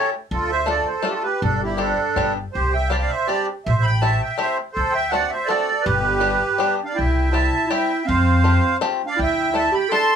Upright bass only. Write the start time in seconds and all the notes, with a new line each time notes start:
0.31 D2
1.42 G1
2.16 G1
2.55 C2
3.66 A1
4.77 D2
5.86 G1
6.99 C2
8.09 F2
9.19 D2